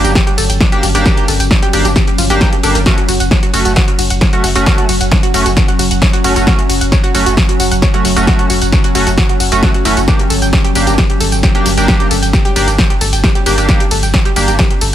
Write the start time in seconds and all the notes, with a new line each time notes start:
Already playing: F#3 A#3 C#4 D4 G4
0.04 G1 G4, closed hi-hat, tambourine
0.15 G4, kick, snare, closed hi-hat, tambourine
0.27 G4, closed hi-hat
0.38 G1 A4, open hi-hat, ride, tambourine
0.50 G1 G5, closed hi-hat, tambourine
0.60 D5, kick, snare, closed hi-hat, tambourine
0.72 A#3 D4 G4, closed hi-hat
0.83 G1 G4, open hi-hat, ride, tambourine
0.95 G1 A#3 D4 G4, closed hi-hat, tambourine
1.06 A#3 D4 G4, kick, snare, closed hi-hat, tambourine
1.17 G4, closed hi-hat
1.28 G1 A4, open hi-hat, ride, tambourine
1.40 G1 G5, closed hi-hat, tambourine
1.51 D5, kick, snare, closed hi-hat
1.63 G4, closed hi-hat
1.73 G1 A#3 D4 G4, open hi-hat, ride, tambourine
1.85 G1 G4, closed hi-hat, tambourine
1.96 G4, kick, snare, closed hi-hat, tambourine
2.07 G4, closed hi-hat
2.18 G1 F4, open hi-hat, ride, tambourine
2.30 G1 A#3 D4 G4, closed hi-hat, tambourine
2.41 G5, kick, snare, closed hi-hat, tambourine
2.53 G4, closed hi-hat
2.63 G1 A#3 D4 G4 A4, open hi-hat, ride, tambourine
2.75 G1 A#4, closed hi-hat, tambourine
2.86 F#3 A3 C#4 F#4, kick, snare, closed hi-hat, tambourine
2.98 F#4, closed hi-hat
3.08 F#1 F#4, open hi-hat, ride, tambourine
3.20 F#1 F#5, closed hi-hat, tambourine
3.31 C#5, kick, snare, closed hi-hat, tambourine
3.43 F#4, closed hi-hat
3.53 F#1 A3 C#4 F#4, open hi-hat, ride, tambourine
3.65 F#1 F#4, closed hi-hat, tambourine
3.76 F#4, kick, snare, closed hi-hat, tambourine
3.88 F#4, closed hi-hat
3.99 F#1 F#4, open hi-hat, ride, tambourine
4.10 F#1 F#5, closed hi-hat, tambourine
4.21 C#5, kick, snare, closed hi-hat, tambourine
4.33 A3 C#4 F#4, closed hi-hat
4.44 F#1 F#4, open hi-hat, ride, tambourine
4.55 F#1 A3 C#4 F#4, closed hi-hat, tambourine
4.66 A3 C#4 F#4, kick, snare, closed hi-hat, tambourine
4.78 F#4, closed hi-hat
4.89 F#1 F#4, open hi-hat, ride, tambourine
5.01 F#1 F#5, closed hi-hat, tambourine
5.12 C#5, kick, snare, closed hi-hat, tambourine
5.23 F#4, closed hi-hat
5.34 F#1 A3 C#4 F#4, open hi-hat, ride, tambourine
5.46 F#1 F#4, closed hi-hat, tambourine
5.57 F#4, kick, snare, closed hi-hat, tambourine
5.68 F#4, closed hi-hat
5.79 F#1 F#4, open hi-hat, ride, tambourine
5.91 F#1 F#5, closed hi-hat, tambourine
6.02 C#5, kick, snare, closed hi-hat, tambourine
6.13 F#4, closed hi-hat
6.24 F#1 A3 C#4 F#4, open hi-hat, ride, tambourine
6.36 F#1 A3 C#4 F#4, closed hi-hat, tambourine
6.47 A3 C#4 F#4, kick, snare, closed hi-hat, tambourine
6.59 F#4, closed hi-hat
6.69 F#1 F#4, open hi-hat, ride, tambourine
6.81 F#1 F#5, closed hi-hat, tambourine
6.92 C#5, kick, snare, closed hi-hat, tambourine
7.04 F#4, closed hi-hat
7.14 F#1 A3 C#4 F#4, open hi-hat, ride, tambourine
7.26 F#1 F#4, closed hi-hat, tambourine
7.37 F#4, kick, snare, closed hi-hat, tambourine
7.49 F#4, closed hi-hat
7.60 F#1 F#4, open hi-hat, ride, tambourine
7.71 F#1 F#5, closed hi-hat, tambourine
7.82 C#5, kick, snare, closed hi-hat, tambourine
7.94 A3 C#4 F#4, closed hi-hat
8.05 F#1 F#4, open hi-hat, ride, tambourine
8.16 F#1 A3 C#4 F#4, closed hi-hat, tambourine
8.27 A3 C#4 F#4, kick, snare, closed hi-hat, tambourine
8.39 F#4, closed hi-hat
8.50 F#1 F#4, open hi-hat, ride, tambourine
8.62 F#1 F#5, closed hi-hat, tambourine
8.72 C#5, kick, snare, closed hi-hat, tambourine
8.84 F#4, closed hi-hat
8.95 F#1 A3 C#4 F#4, open hi-hat, ride, tambourine
9.07 F#1 F#4, closed hi-hat, tambourine
9.18 F#4, kick, snare, closed hi-hat, tambourine
9.29 F#4, closed hi-hat
9.40 F#1 F#4, open hi-hat, ride, tambourine
9.52 F#1 A3 C#4 F#4, closed hi-hat, tambourine
9.63 F#4, kick, snare, closed hi-hat, tambourine
9.74 F#4, closed hi-hat
9.85 F#1 A3 C#4 E4 F#4, open hi-hat, ride, tambourine
9.97 F#1 F#4, closed hi-hat, tambourine
10.08 A#3 D4 G4, kick, snare, closed hi-hat, tambourine
10.19 G4, closed hi-hat
10.30 G1 A4, open hi-hat, ride, tambourine
10.42 G1 G5, closed hi-hat, tambourine
10.53 G4, kick, snare, closed hi-hat, tambourine
10.64 G4, closed hi-hat
10.75 G1 A#3 D4 G4, open hi-hat, ride, tambourine
10.87 G1 G4, closed hi-hat, tambourine
10.98 G4, kick, snare, closed hi-hat
11.10 G4, closed hi-hat
11.20 G1 A4, open hi-hat, ride, tambourine
11.32 G1 G5, closed hi-hat, tambourine
11.43 G4, kick, snare, closed hi-hat, tambourine
11.55 A#3 D4 G4, closed hi-hat
11.66 G1 G4, open hi-hat, ride, tambourine
11.77 G1 A#3 D4 G4, closed hi-hat, tambourine
11.88 A#3 D4 G4, kick, snare, closed hi-hat, tambourine
12.00 G4, closed hi-hat
12.11 G1 A4, open hi-hat, ride, tambourine
12.22 G1 G5, closed hi-hat, tambourine
12.33 G4, kick, snare, closed hi-hat, tambourine
12.45 G4, closed hi-hat
12.56 G1 A#3 D4 G4, open hi-hat, ride, tambourine
12.68 G1 G4, closed hi-hat, tambourine
12.78 G4, kick, snare, closed hi-hat, tambourine
12.90 G4, closed hi-hat
13.01 G1 A4, open hi-hat, ride, tambourine
13.13 G1 G5, closed hi-hat, tambourine
13.24 G4, kick, snare, closed hi-hat
13.35 G4, closed hi-hat
13.46 G1 A#3 D4 G4, open hi-hat, ride, tambourine
13.58 G1 A#3 D4 G4, closed hi-hat, tambourine
13.69 A#3 D4 G4, kick, snare, closed hi-hat, tambourine
13.80 G4, closed hi-hat
13.91 G1 A4, open hi-hat, ride, tambourine
14.03 G1 G5, closed hi-hat, tambourine
14.14 G4, kick, snare, closed hi-hat
14.25 G4, closed hi-hat
14.36 G1 A#3 D4 G4, open hi-hat, ride, tambourine
14.48 G1 G4, closed hi-hat, tambourine
14.59 G4, kick, snare, closed hi-hat, tambourine
14.71 G4, closed hi-hat
14.81 G1 A4, open hi-hat, ride, tambourine